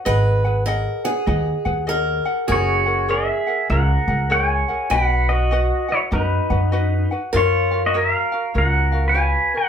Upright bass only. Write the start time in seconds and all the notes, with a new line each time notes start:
0.06 G#1
1.27 D#2
1.66 D#2
2.49 F#1
3.70 C#2
4.08 C#2
4.91 B1
6.12 F#2
6.50 F#2
7.34 F#2
8.55 C#2